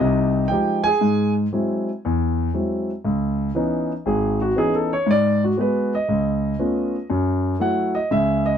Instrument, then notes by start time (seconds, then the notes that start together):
grand piano
0.00 C2 C3 D#4 D#5
0.48 F3 G#3 D#4 G4 G5
0.84 G#4 G#5
1.01 G#2
1.53 F#3 G#3 C4 E4
2.05 E2
2.54 F#3 G#3 C4 E4
3.05 C#2
3.55 E3 B3 C#4 D#4
4.06 G#1 G#4
4.42 F#4
4.56 E3 B3 C#4 D#4 G#4
4.75 A4
4.93 C#5
5.06 G#2
5.11 D5
5.44 F#4
5.57 G#3 B3 F#4 B4
5.95 D#5
6.09 C#2
6.59 A3 B3 C#4 F4
7.10 F#2
7.60 F#3 A3 E4 F#5
7.95 D#5
8.11 C#2 C#3 E5
8.46 D#5